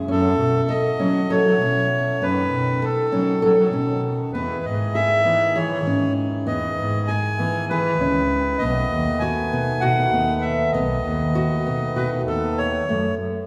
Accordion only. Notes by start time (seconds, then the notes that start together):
0.11 A4
0.69 D#5
1.31 C#5
2.23 B4
2.85 A4
3.45 A4
4.33 B4
4.65 D#5
4.94 E5
5.56 C#5
6.47 D#5
7.08 G#5
7.70 B4
8.59 D#5
9.20 G#5
9.81 F#5
10.41 E5
10.72 D#5
11.96 B4
12.27 A4
12.58 C#5